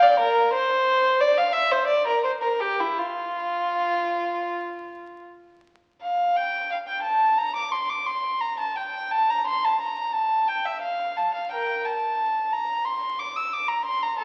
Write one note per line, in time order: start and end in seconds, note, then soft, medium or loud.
0.03 0.20 D5 loud
0.20 0.53 A#4 medium
0.53 1.19 C5 loud
1.21 1.38 D5 loud
1.38 1.55 F5 medium
1.53 1.71 E5 loud
1.72 1.90 C5 medium
1.87 2.06 D5 medium
2.07 2.25 A#4 medium
2.24 2.31 C5 loud
2.43 2.61 A#4 medium
2.60 2.79 G4 medium
2.80 2.99 E4 medium
2.98 5.24 F4 medium
6.02 6.34 F5 medium
6.36 6.70 G5 medium
6.71 6.78 F5 medium
6.87 7.04 G5 medium
7.03 7.37 A5 medium
7.38 7.55 A#5 medium
7.56 7.72 D6 medium
7.72 7.89 C6 medium
7.90 8.07 D6 medium
8.06 8.42 C6 medium
8.41 8.59 A#5 medium
8.60 8.77 A5 medium
8.76 9.11 G5 medium
9.12 9.28 A5 medium
9.30 9.46 A#5 medium
9.47 9.63 C6 medium
9.64 9.80 A5 medium
9.81 10.13 A#5 medium
10.13 10.47 A5 medium
10.48 10.65 G5 medium
10.66 10.82 E5 medium
10.81 11.15 F5 medium
11.17 11.34 A5 medium
11.34 11.51 F5 medium
11.52 11.83 A#4 medium
11.52 11.85 G5 medium
11.85 12.53 A5 medium
12.53 12.86 A#5 medium
12.85 13.19 C6 medium
13.19 13.36 D6 medium
13.36 13.53 E6 medium
13.54 13.70 D6 medium
13.69 13.85 A#5 medium
13.85 14.02 C6 medium
14.03 14.19 A#5 medium
14.19 14.24 A4 medium
14.19 14.24 A5 medium